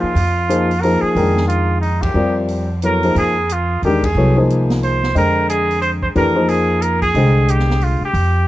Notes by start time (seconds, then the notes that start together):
Already playing: F3 A#3 D#4 G#4 C5
0.00 F4, muted upright bass stroke
0.15 F2, open hi-hat
0.49 F3 A#3 D#4 G#4 C5, closed hi-hat
0.71 open hi-hat
0.81 F3 A#3 D#4 G#4 A#4 C5, open hi-hat
1.01 G#4, muted upright bass stroke
1.15 F2 D#3 G#3 D4 A#4 G5, open hi-hat
1.37 snare
1.48 F4, closed hi-hat
1.81 D#4, open hi-hat
2.02 G4, kick, ride
2.14 F2 G3 C4 F4 A#4 D5
2.48 open hi-hat
2.82 F#3 B3 E4 A4 A#4 C#5, closed hi-hat
3.03 F3 A#3 D#4 G#4 C5, open hi-hat
3.15 F2 G#4, open hi-hat
3.49 F4, closed hi-hat
3.82 E2 D#3 G#3 D4 G4 A#4, open hi-hat
4.03 G#4, kick, ride
4.15 C2 F#3 B3 E4 A4 C#5
4.36 F3 A#3 D#4 G#4 C5
4.50 closed hi-hat
4.70 snare, open hi-hat
4.83 C5, open hi-hat
5.03 snare
5.15 F2 D3 G#3 A#4 C5 D#5 G5, open hi-hat
5.49 G#4, closed hi-hat
5.71 open hi-hat
5.82 C5, open hi-hat
6.03 C5, kick
6.15 F2 E3 A3 D4 G4 A#4 B4, open hi-hat
6.36 F3 A#3 D#4 G#4 C5
6.49 G#4, open hi-hat
6.82 A#4, closed hi-hat
7.02 G#4, kick, open hi-hat
7.15 C2 D3 G#3 C5 D#5 G5, open hi-hat
7.48 G4, closed hi-hat
7.59 snare
7.70 snare
7.81 F4, open hi-hat
8.01 G4, muted upright bass stroke
8.14 F2, open hi-hat